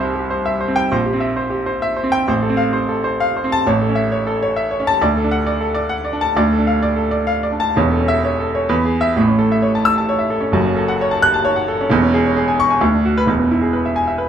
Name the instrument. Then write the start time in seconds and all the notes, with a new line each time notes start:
grand piano
Already playing: C2 C4 G4 E5
0.00 C5
0.15 G4
0.30 C5
0.46 E5
0.60 C5
0.68 C4
0.76 G5
0.92 A#1 C5
1.06 G4
1.13 C4
1.20 E5
1.36 C5
1.50 G4
1.66 C5
1.82 E5
1.97 C5
2.04 C4
2.12 G5
2.28 A1 C5
2.43 A4
2.50 C4
2.57 F5
2.73 C5
2.89 A4
3.04 C5
3.20 F5
3.37 C5
3.44 C4
3.52 A5
3.67 A1 C#5
3.81 A4
3.89 C#4
3.95 E5
4.12 C#5
4.27 A4
4.43 C#5
4.56 E5
4.71 C#5
4.80 C#4
4.87 A5
5.01 D2 D5
5.17 A4
5.24 D4
5.31 F#5
5.47 D5
5.61 A4
5.75 D5
5.89 F#5
6.05 D5
6.13 D4
6.21 A5
6.37 D2 D5
6.53 A4
6.58 D4
6.67 F5
6.83 D5
6.96 A4
7.11 D5
7.27 F5
7.43 D5
7.52 D4
7.60 A5
7.76 E1 E2 C#5
7.91 A4
8.00 C#4
8.08 E5
8.24 C#5
8.40 A4
8.55 C#5
8.69 E2 B4
8.85 G#4
9.01 E5
9.16 A1 A2
9.28 C#4
9.39 A4
9.52 E5
9.62 C#5
9.75 A5
9.85 E6
9.98 A5
10.09 C#5
10.19 E5
10.30 A4
10.40 C#4
10.52 F#1 F#2
10.66 C#4
10.76 A4
10.88 F#5
11.01 C#5
11.11 A5
11.22 F#6
11.34 A5
11.45 C#5
11.56 F#5
11.68 A4
11.81 C#4
11.90 E1 E2
12.02 C#4
12.14 G#4
12.26 C#5
12.37 G#4
12.48 G#5
12.60 C#6
12.71 G#5
12.81 D2
12.94 D4
13.05 F#4
13.17 B4
13.26 E1 E2
13.39 B3
13.51 E4
13.61 G#4
13.73 B4
13.85 E5
13.96 G#5
14.08 E5
14.18 B4